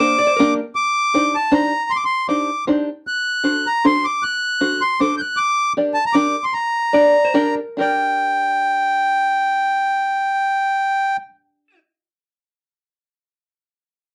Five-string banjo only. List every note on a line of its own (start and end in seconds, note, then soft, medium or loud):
0.00 0.20 A#3 medium
0.00 0.20 D4 medium
0.00 0.20 G4 medium
0.00 0.20 A#4 medium
0.39 0.59 A#3 loud
0.39 0.59 D4 medium
0.39 0.59 G4 medium
0.39 0.59 A#4 medium
1.14 1.35 D4 medium
1.14 1.35 D#4 medium
1.14 1.35 G4 medium
1.14 1.35 C5 medium
1.52 1.72 D4 medium
1.52 1.72 D#4 medium
1.52 1.72 G4 medium
1.52 1.72 C5 medium
2.29 2.49 D4 medium
2.29 2.49 D#4 medium
2.29 2.49 G4 soft
2.29 2.49 C5 medium
2.67 2.89 D4 medium
2.67 2.88 D#4 medium
2.67 2.88 G4 medium
2.67 2.88 C5 medium
3.44 3.65 D4 medium
3.44 3.65 F#4 soft
3.44 3.65 A4 medium
3.44 3.65 C5 medium
3.85 4.05 D4 medium
3.85 4.05 F#4 medium
3.85 4.05 A4 medium
3.85 4.05 C5 medium
4.61 4.81 D4 medium
4.61 4.81 F#4 medium
4.61 4.81 A4 soft
4.61 4.81 C5 medium
5.00 5.20 D4 medium
5.00 5.20 F#4 medium
5.00 5.20 A4 medium
5.00 5.20 C5 medium
5.77 5.97 D4 medium
5.77 5.97 G4 medium
5.77 5.97 A#4 medium
5.77 5.97 D5 medium
6.14 6.35 D4 medium
6.14 6.35 G4 medium
6.14 6.35 A#4 medium
6.14 6.35 D5 medium
6.93 7.16 D4 medium
6.93 7.16 G4 medium
6.93 7.15 A#4 medium
6.93 7.15 D5 medium
7.34 7.58 D4 medium
7.34 7.58 G4 medium
7.34 7.58 A#4 medium
7.34 7.58 D5 medium
7.77 11.75 D4 medium
7.77 11.77 G4 medium
7.77 11.77 A#4 medium
7.77 11.79 D5 medium